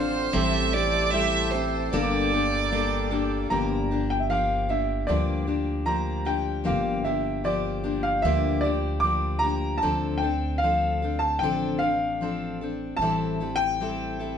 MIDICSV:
0, 0, Header, 1, 6, 480
1, 0, Start_track
1, 0, Tempo, 790514
1, 209, Time_signature, 4, 2, 24, 8
1, 8731, End_track
2, 0, Start_track
2, 0, Title_t, "Upright piano"
2, 0, Program_c, 0, 0
2, 0, Note_on_c, 0, 84, 97
2, 430, Note_off_c, 0, 84, 0
2, 2126, Note_on_c, 0, 82, 74
2, 2491, Note_on_c, 0, 79, 73
2, 2497, Note_off_c, 0, 82, 0
2, 2550, Note_on_c, 0, 76, 53
2, 2568, Note_off_c, 0, 79, 0
2, 2599, Note_off_c, 0, 76, 0
2, 2611, Note_on_c, 0, 77, 79
2, 2854, Note_on_c, 0, 76, 76
2, 2856, Note_off_c, 0, 77, 0
2, 3078, Note_on_c, 0, 74, 76
2, 3098, Note_off_c, 0, 76, 0
2, 3557, Note_on_c, 0, 82, 72
2, 3577, Note_off_c, 0, 74, 0
2, 3804, Note_on_c, 0, 79, 74
2, 3810, Note_off_c, 0, 82, 0
2, 4046, Note_on_c, 0, 77, 64
2, 4053, Note_off_c, 0, 79, 0
2, 4270, Note_off_c, 0, 77, 0
2, 4277, Note_on_c, 0, 76, 74
2, 4523, Note_on_c, 0, 74, 81
2, 4530, Note_off_c, 0, 76, 0
2, 4875, Note_on_c, 0, 77, 80
2, 4897, Note_off_c, 0, 74, 0
2, 4993, Note_off_c, 0, 77, 0
2, 4993, Note_on_c, 0, 76, 89
2, 5227, Note_on_c, 0, 74, 87
2, 5249, Note_off_c, 0, 76, 0
2, 5461, Note_off_c, 0, 74, 0
2, 5465, Note_on_c, 0, 86, 84
2, 5701, Note_on_c, 0, 82, 88
2, 5725, Note_off_c, 0, 86, 0
2, 5936, Note_on_c, 0, 81, 81
2, 5963, Note_off_c, 0, 82, 0
2, 6179, Note_on_c, 0, 79, 79
2, 6201, Note_off_c, 0, 81, 0
2, 6424, Note_on_c, 0, 77, 85
2, 6442, Note_off_c, 0, 79, 0
2, 6794, Note_on_c, 0, 81, 84
2, 6809, Note_off_c, 0, 77, 0
2, 6916, Note_on_c, 0, 79, 82
2, 6926, Note_off_c, 0, 81, 0
2, 7157, Note_on_c, 0, 77, 88
2, 7171, Note_off_c, 0, 79, 0
2, 7619, Note_off_c, 0, 77, 0
2, 7873, Note_on_c, 0, 81, 90
2, 8217, Note_off_c, 0, 81, 0
2, 8231, Note_on_c, 0, 79, 102
2, 8731, Note_off_c, 0, 79, 0
2, 8731, End_track
3, 0, Start_track
3, 0, Title_t, "Fiddle"
3, 0, Program_c, 1, 110
3, 0, Note_on_c, 1, 72, 97
3, 204, Note_on_c, 1, 76, 106
3, 214, Note_off_c, 1, 72, 0
3, 444, Note_on_c, 1, 74, 107
3, 453, Note_off_c, 1, 76, 0
3, 672, Note_on_c, 1, 76, 107
3, 681, Note_off_c, 1, 74, 0
3, 915, Note_on_c, 1, 72, 86
3, 924, Note_off_c, 1, 76, 0
3, 1161, Note_off_c, 1, 72, 0
3, 1167, Note_on_c, 1, 74, 101
3, 2102, Note_off_c, 1, 74, 0
3, 8731, End_track
4, 0, Start_track
4, 0, Title_t, "Accordion"
4, 0, Program_c, 2, 21
4, 0, Note_on_c, 2, 50, 76
4, 0, Note_on_c, 2, 60, 72
4, 0, Note_on_c, 2, 65, 88
4, 185, Note_off_c, 2, 60, 0
4, 185, Note_off_c, 2, 65, 0
4, 186, Note_off_c, 2, 50, 0
4, 213, Note_on_c, 2, 69, 78
4, 214, Note_on_c, 2, 67, 88
4, 218, Note_on_c, 2, 48, 84
4, 1162, Note_off_c, 2, 48, 0
4, 1175, Note_on_c, 2, 46, 73
4, 2109, Note_off_c, 2, 69, 0
4, 2110, Note_off_c, 2, 67, 0
4, 2121, Note_off_c, 2, 46, 0
4, 8731, End_track
5, 0, Start_track
5, 0, Title_t, "Steel-string acoustic guitar"
5, 0, Program_c, 3, 25
5, 0, Note_on_c, 3, 60, 46
5, 0, Note_on_c, 3, 62, 54
5, 0, Note_on_c, 3, 69, 53
5, 194, Note_off_c, 3, 60, 0
5, 197, Note_off_c, 3, 69, 0
5, 199, Note_off_c, 3, 62, 0
5, 199, Note_on_c, 3, 45, 83
5, 201, Note_on_c, 3, 55, 98
5, 201, Note_on_c, 3, 60, 95
5, 201, Note_on_c, 3, 64, 95
5, 202, Note_on_c, 3, 52, 84
5, 204, Note_on_c, 3, 69, 85
5, 439, Note_off_c, 3, 69, 0
5, 442, Note_off_c, 3, 64, 0
5, 444, Note_off_c, 3, 45, 0
5, 444, Note_off_c, 3, 60, 0
5, 445, Note_off_c, 3, 52, 0
5, 445, Note_off_c, 3, 55, 0
5, 447, Note_on_c, 3, 69, 75
5, 449, Note_on_c, 3, 64, 63
5, 456, Note_on_c, 3, 60, 50
5, 459, Note_on_c, 3, 55, 49
5, 677, Note_off_c, 3, 55, 0
5, 680, Note_off_c, 3, 60, 0
5, 684, Note_off_c, 3, 64, 0
5, 684, Note_on_c, 3, 55, 76
5, 687, Note_off_c, 3, 69, 0
5, 687, Note_on_c, 3, 60, 82
5, 691, Note_on_c, 3, 64, 94
5, 695, Note_on_c, 3, 69, 77
5, 923, Note_off_c, 3, 69, 0
5, 925, Note_off_c, 3, 55, 0
5, 927, Note_off_c, 3, 60, 0
5, 927, Note_off_c, 3, 64, 0
5, 930, Note_on_c, 3, 69, 58
5, 935, Note_on_c, 3, 64, 59
5, 938, Note_on_c, 3, 60, 53
5, 939, Note_on_c, 3, 55, 49
5, 1163, Note_off_c, 3, 55, 0
5, 1167, Note_off_c, 3, 69, 0
5, 1169, Note_on_c, 3, 50, 93
5, 1170, Note_off_c, 3, 64, 0
5, 1170, Note_on_c, 3, 43, 95
5, 1171, Note_on_c, 3, 55, 105
5, 1172, Note_off_c, 3, 60, 0
5, 1173, Note_on_c, 3, 62, 97
5, 1174, Note_on_c, 3, 58, 114
5, 1174, Note_on_c, 3, 69, 104
5, 1404, Note_off_c, 3, 69, 0
5, 1408, Note_off_c, 3, 43, 0
5, 1408, Note_off_c, 3, 50, 0
5, 1409, Note_off_c, 3, 55, 0
5, 1410, Note_off_c, 3, 58, 0
5, 1410, Note_off_c, 3, 62, 0
5, 1412, Note_on_c, 3, 69, 69
5, 1418, Note_on_c, 3, 58, 53
5, 1418, Note_on_c, 3, 62, 57
5, 1425, Note_on_c, 3, 55, 50
5, 1641, Note_off_c, 3, 55, 0
5, 1645, Note_off_c, 3, 58, 0
5, 1647, Note_off_c, 3, 62, 0
5, 1648, Note_on_c, 3, 55, 71
5, 1649, Note_off_c, 3, 69, 0
5, 1652, Note_on_c, 3, 58, 72
5, 1655, Note_on_c, 3, 62, 81
5, 1656, Note_on_c, 3, 69, 82
5, 1880, Note_off_c, 3, 69, 0
5, 1883, Note_off_c, 3, 62, 0
5, 1887, Note_off_c, 3, 55, 0
5, 1887, Note_off_c, 3, 58, 0
5, 1887, Note_on_c, 3, 69, 67
5, 1891, Note_on_c, 3, 62, 63
5, 1894, Note_on_c, 3, 58, 51
5, 1901, Note_on_c, 3, 55, 49
5, 2126, Note_off_c, 3, 55, 0
5, 2126, Note_off_c, 3, 58, 0
5, 2127, Note_off_c, 3, 62, 0
5, 2127, Note_off_c, 3, 69, 0
5, 2127, Note_on_c, 3, 43, 58
5, 2128, Note_on_c, 3, 53, 61
5, 2129, Note_on_c, 3, 50, 61
5, 2134, Note_on_c, 3, 58, 64
5, 2134, Note_on_c, 3, 62, 69
5, 2136, Note_on_c, 3, 67, 68
5, 2366, Note_off_c, 3, 67, 0
5, 2367, Note_off_c, 3, 43, 0
5, 2367, Note_off_c, 3, 53, 0
5, 2368, Note_off_c, 3, 50, 0
5, 2370, Note_off_c, 3, 58, 0
5, 2370, Note_off_c, 3, 62, 0
5, 2373, Note_on_c, 3, 67, 47
5, 2379, Note_on_c, 3, 62, 50
5, 2380, Note_on_c, 3, 58, 38
5, 2386, Note_on_c, 3, 53, 43
5, 2600, Note_off_c, 3, 53, 0
5, 2603, Note_off_c, 3, 58, 0
5, 2607, Note_on_c, 3, 53, 58
5, 2610, Note_off_c, 3, 67, 0
5, 2611, Note_off_c, 3, 62, 0
5, 2611, Note_on_c, 3, 58, 51
5, 2618, Note_on_c, 3, 62, 60
5, 2619, Note_on_c, 3, 67, 59
5, 2839, Note_off_c, 3, 67, 0
5, 2841, Note_off_c, 3, 62, 0
5, 2843, Note_off_c, 3, 58, 0
5, 2846, Note_on_c, 3, 67, 48
5, 2847, Note_off_c, 3, 53, 0
5, 2848, Note_on_c, 3, 62, 46
5, 2850, Note_on_c, 3, 58, 44
5, 2855, Note_on_c, 3, 53, 40
5, 3080, Note_off_c, 3, 53, 0
5, 3083, Note_on_c, 3, 43, 65
5, 3084, Note_off_c, 3, 58, 0
5, 3084, Note_off_c, 3, 62, 0
5, 3085, Note_off_c, 3, 67, 0
5, 3087, Note_on_c, 3, 53, 73
5, 3088, Note_on_c, 3, 50, 73
5, 3091, Note_on_c, 3, 58, 74
5, 3091, Note_on_c, 3, 62, 71
5, 3092, Note_on_c, 3, 67, 69
5, 3313, Note_off_c, 3, 67, 0
5, 3318, Note_off_c, 3, 62, 0
5, 3320, Note_off_c, 3, 58, 0
5, 3321, Note_on_c, 3, 67, 47
5, 3323, Note_off_c, 3, 53, 0
5, 3325, Note_off_c, 3, 43, 0
5, 3325, Note_on_c, 3, 62, 47
5, 3327, Note_on_c, 3, 58, 46
5, 3328, Note_off_c, 3, 50, 0
5, 3331, Note_on_c, 3, 53, 40
5, 3548, Note_off_c, 3, 53, 0
5, 3553, Note_off_c, 3, 58, 0
5, 3555, Note_on_c, 3, 53, 53
5, 3558, Note_off_c, 3, 62, 0
5, 3559, Note_off_c, 3, 67, 0
5, 3561, Note_on_c, 3, 58, 54
5, 3566, Note_on_c, 3, 62, 57
5, 3566, Note_on_c, 3, 67, 53
5, 3788, Note_off_c, 3, 67, 0
5, 3790, Note_off_c, 3, 62, 0
5, 3793, Note_off_c, 3, 58, 0
5, 3795, Note_on_c, 3, 67, 51
5, 3798, Note_off_c, 3, 53, 0
5, 3798, Note_on_c, 3, 62, 44
5, 3800, Note_on_c, 3, 58, 45
5, 3805, Note_on_c, 3, 53, 47
5, 4028, Note_off_c, 3, 53, 0
5, 4029, Note_off_c, 3, 58, 0
5, 4030, Note_off_c, 3, 62, 0
5, 4030, Note_on_c, 3, 43, 70
5, 4033, Note_off_c, 3, 67, 0
5, 4035, Note_on_c, 3, 50, 55
5, 4036, Note_on_c, 3, 53, 63
5, 4037, Note_on_c, 3, 58, 69
5, 4037, Note_on_c, 3, 62, 67
5, 4040, Note_on_c, 3, 67, 72
5, 4272, Note_off_c, 3, 67, 0
5, 4274, Note_off_c, 3, 62, 0
5, 4278, Note_off_c, 3, 58, 0
5, 4279, Note_off_c, 3, 43, 0
5, 4280, Note_on_c, 3, 67, 53
5, 4281, Note_on_c, 3, 62, 46
5, 4282, Note_off_c, 3, 50, 0
5, 4282, Note_off_c, 3, 53, 0
5, 4285, Note_on_c, 3, 58, 41
5, 4289, Note_on_c, 3, 53, 39
5, 4510, Note_off_c, 3, 53, 0
5, 4514, Note_off_c, 3, 58, 0
5, 4518, Note_on_c, 3, 53, 55
5, 4521, Note_off_c, 3, 62, 0
5, 4521, Note_on_c, 3, 58, 62
5, 4524, Note_off_c, 3, 67, 0
5, 4528, Note_on_c, 3, 62, 63
5, 4530, Note_on_c, 3, 67, 71
5, 4750, Note_off_c, 3, 67, 0
5, 4752, Note_off_c, 3, 62, 0
5, 4757, Note_on_c, 3, 67, 52
5, 4758, Note_off_c, 3, 58, 0
5, 4759, Note_on_c, 3, 62, 51
5, 4763, Note_off_c, 3, 53, 0
5, 4765, Note_on_c, 3, 58, 44
5, 4771, Note_on_c, 3, 53, 37
5, 5002, Note_off_c, 3, 53, 0
5, 5002, Note_off_c, 3, 58, 0
5, 5002, Note_off_c, 3, 62, 0
5, 5003, Note_off_c, 3, 67, 0
5, 5006, Note_on_c, 3, 43, 69
5, 5007, Note_on_c, 3, 50, 79
5, 5009, Note_on_c, 3, 53, 81
5, 5009, Note_on_c, 3, 58, 83
5, 5009, Note_on_c, 3, 62, 77
5, 5010, Note_on_c, 3, 67, 82
5, 5234, Note_off_c, 3, 67, 0
5, 5239, Note_off_c, 3, 62, 0
5, 5242, Note_off_c, 3, 58, 0
5, 5242, Note_on_c, 3, 67, 59
5, 5244, Note_off_c, 3, 53, 0
5, 5246, Note_on_c, 3, 62, 47
5, 5248, Note_off_c, 3, 43, 0
5, 5248, Note_off_c, 3, 50, 0
5, 5249, Note_on_c, 3, 58, 44
5, 5251, Note_on_c, 3, 53, 45
5, 5476, Note_off_c, 3, 53, 0
5, 5480, Note_off_c, 3, 58, 0
5, 5483, Note_on_c, 3, 53, 52
5, 5484, Note_off_c, 3, 62, 0
5, 5486, Note_off_c, 3, 67, 0
5, 5488, Note_on_c, 3, 58, 55
5, 5491, Note_on_c, 3, 62, 62
5, 5497, Note_on_c, 3, 67, 61
5, 5712, Note_off_c, 3, 67, 0
5, 5715, Note_off_c, 3, 62, 0
5, 5719, Note_off_c, 3, 53, 0
5, 5719, Note_off_c, 3, 58, 0
5, 5719, Note_on_c, 3, 67, 53
5, 5722, Note_on_c, 3, 62, 45
5, 5727, Note_on_c, 3, 53, 43
5, 5727, Note_on_c, 3, 58, 39
5, 5958, Note_off_c, 3, 53, 0
5, 5959, Note_off_c, 3, 62, 0
5, 5963, Note_on_c, 3, 50, 66
5, 5965, Note_off_c, 3, 58, 0
5, 5965, Note_off_c, 3, 67, 0
5, 5965, Note_on_c, 3, 53, 77
5, 5967, Note_on_c, 3, 60, 73
5, 5967, Note_on_c, 3, 62, 68
5, 5967, Note_on_c, 3, 69, 83
5, 6198, Note_off_c, 3, 69, 0
5, 6205, Note_off_c, 3, 62, 0
5, 6205, Note_on_c, 3, 69, 48
5, 6207, Note_off_c, 3, 50, 0
5, 6208, Note_off_c, 3, 53, 0
5, 6209, Note_off_c, 3, 60, 0
5, 6212, Note_on_c, 3, 62, 47
5, 6217, Note_on_c, 3, 60, 42
5, 6448, Note_off_c, 3, 69, 0
5, 6451, Note_off_c, 3, 60, 0
5, 6451, Note_off_c, 3, 62, 0
5, 6453, Note_on_c, 3, 53, 53
5, 6458, Note_on_c, 3, 60, 55
5, 6460, Note_on_c, 3, 69, 65
5, 6461, Note_on_c, 3, 62, 65
5, 6685, Note_off_c, 3, 69, 0
5, 6692, Note_off_c, 3, 53, 0
5, 6692, Note_on_c, 3, 69, 47
5, 6694, Note_off_c, 3, 60, 0
5, 6696, Note_off_c, 3, 62, 0
5, 6702, Note_on_c, 3, 62, 45
5, 6705, Note_on_c, 3, 60, 37
5, 6931, Note_off_c, 3, 69, 0
5, 6933, Note_off_c, 3, 60, 0
5, 6936, Note_off_c, 3, 62, 0
5, 6937, Note_on_c, 3, 53, 72
5, 6940, Note_on_c, 3, 50, 66
5, 6940, Note_on_c, 3, 60, 73
5, 6943, Note_on_c, 3, 62, 74
5, 6943, Note_on_c, 3, 69, 76
5, 7170, Note_off_c, 3, 69, 0
5, 7174, Note_off_c, 3, 53, 0
5, 7175, Note_off_c, 3, 50, 0
5, 7175, Note_off_c, 3, 60, 0
5, 7175, Note_off_c, 3, 62, 0
5, 7178, Note_on_c, 3, 69, 45
5, 7183, Note_on_c, 3, 62, 46
5, 7191, Note_on_c, 3, 60, 40
5, 7412, Note_on_c, 3, 53, 54
5, 7413, Note_off_c, 3, 60, 0
5, 7414, Note_off_c, 3, 69, 0
5, 7417, Note_off_c, 3, 62, 0
5, 7420, Note_on_c, 3, 60, 57
5, 7423, Note_on_c, 3, 62, 50
5, 7424, Note_on_c, 3, 69, 57
5, 7651, Note_off_c, 3, 53, 0
5, 7651, Note_off_c, 3, 69, 0
5, 7655, Note_off_c, 3, 60, 0
5, 7657, Note_off_c, 3, 62, 0
5, 7658, Note_on_c, 3, 69, 46
5, 7665, Note_on_c, 3, 62, 44
5, 7671, Note_on_c, 3, 60, 43
5, 7894, Note_off_c, 3, 69, 0
5, 7896, Note_off_c, 3, 60, 0
5, 7898, Note_off_c, 3, 62, 0
5, 7900, Note_on_c, 3, 45, 58
5, 7902, Note_on_c, 3, 52, 64
5, 7903, Note_on_c, 3, 64, 66
5, 7904, Note_on_c, 3, 60, 67
5, 7905, Note_on_c, 3, 55, 61
5, 7905, Note_on_c, 3, 69, 75
5, 8132, Note_off_c, 3, 69, 0
5, 8135, Note_off_c, 3, 45, 0
5, 8136, Note_off_c, 3, 52, 0
5, 8137, Note_off_c, 3, 60, 0
5, 8137, Note_off_c, 3, 64, 0
5, 8138, Note_off_c, 3, 55, 0
5, 8139, Note_on_c, 3, 69, 49
5, 8144, Note_on_c, 3, 64, 46
5, 8147, Note_on_c, 3, 60, 44
5, 8149, Note_on_c, 3, 55, 42
5, 8374, Note_off_c, 3, 55, 0
5, 8375, Note_off_c, 3, 69, 0
5, 8377, Note_off_c, 3, 60, 0
5, 8377, Note_off_c, 3, 64, 0
5, 8381, Note_on_c, 3, 55, 59
5, 8384, Note_on_c, 3, 60, 52
5, 8390, Note_on_c, 3, 69, 68
5, 8391, Note_on_c, 3, 64, 60
5, 8611, Note_off_c, 3, 69, 0
5, 8615, Note_off_c, 3, 55, 0
5, 8617, Note_off_c, 3, 60, 0
5, 8617, Note_off_c, 3, 64, 0
5, 8619, Note_on_c, 3, 69, 53
5, 8624, Note_on_c, 3, 64, 44
5, 8625, Note_on_c, 3, 55, 40
5, 8628, Note_on_c, 3, 60, 39
5, 8731, Note_off_c, 3, 55, 0
5, 8731, Note_off_c, 3, 60, 0
5, 8731, Note_off_c, 3, 64, 0
5, 8731, Note_off_c, 3, 69, 0
5, 8731, End_track
6, 0, Start_track
6, 0, Title_t, "Upright bass"
6, 0, Program_c, 4, 32
6, 0, Note_on_c, 4, 33, 85
6, 184, Note_off_c, 4, 33, 0
6, 209, Note_on_c, 4, 33, 99
6, 1143, Note_off_c, 4, 33, 0
6, 1169, Note_on_c, 4, 31, 87
6, 2103, Note_off_c, 4, 31, 0
6, 2130, Note_on_c, 4, 31, 85
6, 3064, Note_off_c, 4, 31, 0
6, 3091, Note_on_c, 4, 38, 74
6, 4048, Note_on_c, 4, 31, 89
6, 4057, Note_off_c, 4, 38, 0
6, 4985, Note_off_c, 4, 31, 0
6, 5003, Note_on_c, 4, 38, 75
6, 5943, Note_off_c, 4, 38, 0
6, 5972, Note_on_c, 4, 38, 74
6, 6907, Note_off_c, 4, 38, 0
6, 6928, Note_on_c, 4, 33, 84
6, 7865, Note_off_c, 4, 33, 0
6, 7885, Note_on_c, 4, 33, 78
6, 8731, Note_off_c, 4, 33, 0
6, 8731, End_track
0, 0, End_of_file